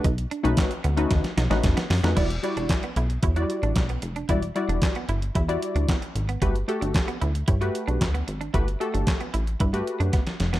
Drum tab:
CC |----------------|x---------------|----------------|----------------|
HH |xxxxxxxxxxxxxxox|xxxxxxxxxxxxxxxx|xxxxxxxxxxxxxxxx|xxxxxxxxxxxxxxxx|
CP |----x-----------|----x-------x---|----x-------x---|----x-------x---|
SD |----o---oooooooo|----o-------o---|----o-------o---|----o-------o---|
BD |o---o---o---o---|o---o---o---o---|o---o---o---o---|o---o---o---o---|

CC |----------------|
HH |xxxxxxxxxxxxxxxx|
CP |----x-----------|
SD |----o-------oooo|
BD |o---o---o---o---|